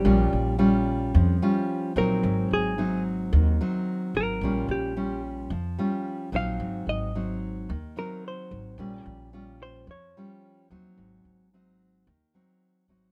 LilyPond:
<<
  \new Staff \with { instrumentName = "Hollow-body jazz guitar" } { \time 4/4 \key bes \minor \tempo 4 = 110 <g g'>4 r2 r8 bes'8~ | bes'8 aes'4 r2 bes'8~ | bes'8 g'4 r2 f''8~ | f''8 ees''4 r4 bes'8 c''4~ |
c''8 r4 c''8 des''4. r8 | r1 | }
  \new Staff \with { instrumentName = "Nylon-string guitar" } { \time 4/4 \key bes \minor << { <g des' f'>4 <g des' f'>4. <g des' f'>4 <ges c' ees'>8~ | <ges c' ees'>4 <ges c' ees'>4. <ges c' ees'>4. | <g des' f'>4 <g des' f'>4 r8 <g des' f'>4 <ges c' ees'>8~ | <ges c' ees'>4 <ges c' ees'>4 r8 <ges c' ees'>4. |
<g des' f'>4 <g des' f'>4 r8 <g des' f'>4 <ges c' ees'>8~ | <ges c' ees'>4 <ges c' ees'>4 r8 <ges c' ees'>4 <ges c' ees'>8 | } \\ { bes,2 f2 | aes,2 ees2 | bes,2 f2 | aes,2 ees2 |
bes,2 f2 | aes,2 ees2 | } >> }
  \new Staff \with { instrumentName = "Upright bass" } { \clef bass \time 4/4 \key bes \minor bes,,8 bes,,4. f,8 r4 bes,,8 | aes,,8 aes,,4. ees,8 r4 aes,,8 | bes,,8 bes,,4. f,8 r4 bes,,8 | aes,,8 aes,,4. ees,8 r4 aes,,8 |
bes,,8 bes,,4. f,8 r4 ees,8 | aes,,8 aes,,4. ees,8 r4 aes,,8 | }
>>